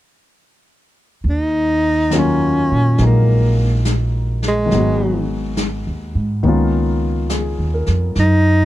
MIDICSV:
0, 0, Header, 1, 5, 480
1, 0, Start_track
1, 0, Key_signature, -6, "minor"
1, 0, Tempo, 865801
1, 692, Time_signature, 4, 2, 24, 8
1, 4796, End_track
2, 0, Start_track
2, 0, Title_t, "Tenor saxophone"
2, 0, Program_c, 0, 66
2, 718, Note_on_c, 0, 63, 86
2, 1213, Note_on_c, 0, 61, 76
2, 1222, Note_off_c, 0, 63, 0
2, 1676, Note_off_c, 0, 61, 0
2, 1697, Note_on_c, 0, 58, 62
2, 2134, Note_off_c, 0, 58, 0
2, 2482, Note_on_c, 0, 56, 77
2, 2929, Note_off_c, 0, 56, 0
2, 4542, Note_on_c, 0, 63, 91
2, 4796, Note_off_c, 0, 63, 0
2, 4796, End_track
3, 0, Start_track
3, 0, Title_t, "Grand piano"
3, 0, Program_c, 1, 0
3, 795, Control_c, 1, 64, 127
3, 1166, Note_on_c, 1, 51, 46
3, 1173, Note_on_c, 1, 54, 40
3, 1180, Note_on_c, 1, 58, 40
3, 1180, Note_on_c, 1, 61, 42
3, 1193, Note_on_c, 1, 65, 45
3, 1651, Note_off_c, 1, 54, 0
3, 1659, Note_on_c, 1, 54, 33
3, 1662, Note_off_c, 1, 58, 0
3, 1666, Note_on_c, 1, 56, 33
3, 1671, Note_on_c, 1, 58, 34
3, 1673, Note_on_c, 1, 63, 39
3, 2575, Note_off_c, 1, 51, 0
3, 2583, Note_on_c, 1, 51, 43
3, 2593, Note_off_c, 1, 54, 0
3, 2601, Note_on_c, 1, 54, 40
3, 2611, Note_off_c, 1, 56, 0
3, 2617, Note_off_c, 1, 61, 0
3, 2619, Note_on_c, 1, 56, 41
3, 2621, Note_off_c, 1, 58, 0
3, 2622, Note_off_c, 1, 63, 0
3, 2622, Control_c, 1, 64, 0
3, 2623, Note_off_c, 1, 65, 0
3, 2631, Note_on_c, 1, 59, 39
3, 2645, Note_on_c, 1, 66, 47
3, 2713, Control_c, 1, 64, 127
3, 3555, Note_off_c, 1, 51, 0
3, 3564, Note_off_c, 1, 54, 0
3, 3565, Note_on_c, 1, 51, 52
3, 3568, Note_off_c, 1, 59, 0
3, 3569, Note_on_c, 1, 58, 43
3, 3573, Note_off_c, 1, 56, 0
3, 3576, Note_on_c, 1, 59, 44
3, 3577, Control_c, 1, 64, 0
3, 3585, Note_off_c, 1, 66, 0
3, 3586, Note_on_c, 1, 61, 44
3, 3595, Note_on_c, 1, 65, 54
3, 3686, Control_c, 1, 64, 127
3, 4047, Note_on_c, 1, 68, 40
3, 4291, Note_on_c, 1, 70, 36
3, 4428, Note_off_c, 1, 68, 0
3, 4523, Note_off_c, 1, 51, 0
3, 4525, Note_off_c, 1, 58, 0
3, 4528, Note_off_c, 1, 59, 0
3, 4531, Control_c, 1, 64, 0
3, 4533, Note_off_c, 1, 61, 0
3, 4538, Note_off_c, 1, 65, 0
3, 4624, Note_off_c, 1, 70, 0
3, 4637, Control_c, 1, 64, 127
3, 4796, End_track
4, 0, Start_track
4, 0, Title_t, "Upright bass"
4, 0, Program_c, 2, 32
4, 687, Note_on_c, 2, 39, 61
4, 1480, Note_off_c, 2, 39, 0
4, 1504, Note_on_c, 2, 46, 51
4, 1645, Note_off_c, 2, 46, 0
4, 1655, Note_on_c, 2, 34, 71
4, 2591, Note_off_c, 2, 34, 0
4, 2613, Note_on_c, 2, 32, 65
4, 3229, Note_off_c, 2, 32, 0
4, 3254, Note_on_c, 2, 39, 49
4, 3401, Note_off_c, 2, 39, 0
4, 3409, Note_on_c, 2, 44, 54
4, 3558, Note_off_c, 2, 44, 0
4, 3567, Note_on_c, 2, 37, 72
4, 4184, Note_off_c, 2, 37, 0
4, 4206, Note_on_c, 2, 39, 50
4, 4355, Note_off_c, 2, 39, 0
4, 4366, Note_on_c, 2, 41, 57
4, 4514, Note_off_c, 2, 41, 0
4, 4523, Note_on_c, 2, 42, 67
4, 4796, Note_off_c, 2, 42, 0
4, 4796, End_track
5, 0, Start_track
5, 0, Title_t, "Drums"
5, 688, Note_on_c, 9, 25, 28
5, 1171, Note_on_c, 9, 38, 36
5, 1171, Note_on_c, 9, 44, 43
5, 1226, Note_off_c, 9, 38, 0
5, 1226, Note_off_c, 9, 44, 0
5, 1652, Note_off_c, 9, 25, 0
5, 1652, Note_on_c, 9, 25, 32
5, 1652, Note_on_c, 9, 38, 22
5, 1707, Note_off_c, 9, 38, 0
5, 2135, Note_on_c, 9, 38, 36
5, 2135, Note_on_c, 9, 44, 44
5, 2190, Note_off_c, 9, 38, 0
5, 2190, Note_off_c, 9, 44, 0
5, 2453, Note_on_c, 9, 38, 23
5, 2508, Note_off_c, 9, 38, 0
5, 2609, Note_off_c, 9, 25, 0
5, 2609, Note_on_c, 9, 25, 32
5, 2609, Note_on_c, 9, 38, 22
5, 2665, Note_off_c, 9, 38, 0
5, 3088, Note_on_c, 9, 38, 35
5, 3088, Note_on_c, 9, 44, 45
5, 3143, Note_off_c, 9, 38, 0
5, 3143, Note_off_c, 9, 44, 0
5, 3565, Note_off_c, 9, 25, 0
5, 3565, Note_on_c, 9, 25, 28
5, 4044, Note_on_c, 9, 38, 35
5, 4044, Note_on_c, 9, 44, 45
5, 4100, Note_off_c, 9, 38, 0
5, 4100, Note_off_c, 9, 44, 0
5, 4359, Note_on_c, 9, 38, 22
5, 4414, Note_off_c, 9, 38, 0
5, 4520, Note_off_c, 9, 25, 0
5, 4520, Note_on_c, 9, 25, 28
5, 4520, Note_on_c, 9, 38, 22
5, 4575, Note_off_c, 9, 38, 0
5, 4796, Note_off_c, 9, 25, 0
5, 4796, End_track
0, 0, End_of_file